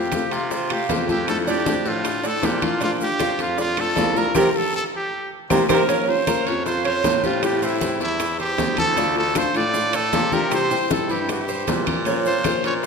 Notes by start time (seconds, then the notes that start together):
Already playing: F2 A3 C4 F4 G4
0.12 C3 A3 C4 F4, high bongo, high conga, high timbale, low timbale, short guiro, claves, maracas
0.31 C3 F4, high conga, high timbale, short guiro, maracas
0.51 F4 C5, muted nylon-string guitar stroke, high bongo, high conga, long guiro, maracas
0.70 A3 C4 F4 G4, high conga, high timbale, claves
0.89 F2 C3 E3 A3 C4 F4 C5, high bongo, low bongo, high conga, high timbale, low timbale, short guiro, maracas
1.08 A3 C4 F4 G4 A4, high conga, short guiro, maracas
1.27 F3 A3 D4 E4 A4, high bongo, high conga, high timbale, long guiro, claves, maracas
1.47 A3 D4 E4 G4, high conga, maracas
1.66 F3 A3 D4 E4, high bongo, high conga, high timbale, low timbale, short guiro, maracas
1.84 A2 F4 A4, high bongo, high conga, short guiro, maracas
2.04 muted nylon-string guitar stroke, high bongo, high conga, high timbale, long guiro, claves, maracas
2.23 A2 A3 D4 E4 A4, high bongo, high conga, maracas
2.41 A#2 F3 A3 D4 E4 G4, high bongo, low bongo, high conga, high timbale, low timbale, short guiro, maracas
2.61 A3 D4 E4 F4 A4, high bongo, high conga, high timbale, short guiro, claves, maracas
2.80 F3 A3 D4 F4, high bongo, high conga, high timbale, long guiro, maracas
3.00 A3 D4 F4 G4, high conga, maracas
3.19 F3 A3 D4 F4, high bongo, high conga, high timbale, low timbale, short guiro, claves, maracas
3.39 F2 F4, high conga, high timbale, short guiro, maracas
3.57 F4 D5, muted nylon-string guitar stroke, high bongo, high conga, long guiro, maracas
3.77 A3 D4 F4 A4, high conga, high timbale, claves
3.96 C2 F3 A3 D4 F4 D5, high bongo, low bongo, high conga, high timbale, low timbale, short guiro, maracas
4.15 A3 D4 F4 A#4, short guiro, maracas
4.34 C3 A#3 C4 E4 G4 A#4 C5, low bongo, high conga, high timbale, long guiro, claves, maracas
4.57 A4
4.76 A4
4.96 G4
5.50 C3 A#3 C4 E4 G4 A#4 C5, low bongo, high conga, high timbale, long guiro, claves, maracas
5.69 C3 A#3 C4 E4 G4 A#4 C5, low bongo, high conga, high timbale, long guiro, claves, maracas
5.88 F3 A#3 C#4 F4 C5, high bongo, high conga, high timbale, long guiro, maracas
6.08 C#4 F4 C5, high conga
6.27 F3 A#3 C#4 F4 A#4 C5, high bongo, high conga, high timbale, low timbale, short guiro, claves, maracas
6.47 F2 C#4 F4 C5 C#5, high conga, high timbale, short guiro, maracas
6.66 F4 C5, muted nylon-string guitar stroke, high bongo, high conga, long guiro, maracas
6.85 C#4 C5, high conga, high timbale, claves
7.04 A2 F3 A#3 C#4 F4 C5, high bongo, low bongo, high conga, high timbale, low timbale, short guiro, maracas
7.23 C#4 F4 G4 C5, high conga, short guiro, maracas
7.42 E3 G3 C4 E4 G4, high bongo, high conga, high timbale, long guiro, claves, maracas
7.62 G3 C4 E4, high conga, maracas
7.81 E3 G3 C4 E4, high bongo, high conga, high timbale, low timbale, short guiro, maracas
8.00 E2 G3 C4 E4, high bongo, high conga, short guiro, maracas
8.20 muted nylon-string guitar stroke, high bongo, high conga, high timbale, long guiro, claves, maracas
8.39 G4 C5, high bongo, high conga
8.58 D2 E3 G3 C4 E4, high bongo, low bongo, high conga, high timbale, low timbale, short guiro, maracas
8.77 G3 C4 E4 A4, high bongo, high conga, high timbale, short guiro, claves, maracas
8.96 D3 A3 D4 F4, high bongo, high conga, high timbale, long guiro, maracas
9.16 A3 D4 F4 A4, high conga
9.35 D3 A3 D4 F4 A4 C5, high bongo, high conga, high timbale, low timbale, short guiro, claves, maracas
9.55 A2 A3 D4 F4 D5, high conga, high timbale, short guiro, maracas
9.74 F4, muted nylon-string guitar stroke, high bongo, high conga, long guiro, maracas
9.93 A4 D5, high conga, high timbale, claves, maracas
10.13 C3 D3 A3 D4 F4, high bongo, low bongo, high conga, high timbale, low timbale, short guiro, maracas
10.32 A3 D4 F4 G4 A#4, high conga, short guiro, maracas
10.51 C3 E3 G3 C4 E4 C5, high bongo, high conga, high timbale, long guiro, claves, maracas
10.71 G3 C4 E4, high conga, maracas
10.90 C3 E3 G3 C4 E4 A4, high bongo, high conga, high timbale, low timbale, short guiro, maracas
11.09 G2 G3 C4 E4 G4, high bongo, high conga, short guiro, maracas
11.29 G4, muted nylon-string guitar stroke, high bongo, high conga, high timbale, long guiro, claves, maracas
11.48 C5, high bongo, high conga, maracas
11.67 A#2 C3 E3 G3 C4 E4, high bongo, low bongo, high conga, high timbale, low timbale, short guiro, maracas
11.86 G3 C4 E4 A#4, high bongo, high conga, high timbale, short guiro, claves, maracas
12.05 F3 A#3 C#4 F4 C5, high bongo, high conga, high timbale, long guiro, maracas
12.25 C#4 F4 C5, high conga, maracas
12.44 F3 A#3 C#4 F4 A#4 C5, high bongo, high conga, high timbale, low timbale, short guiro, claves, maracas
12.64 A#2 C#4 F4 C5 C#5, high conga, high timbale, short guiro, maracas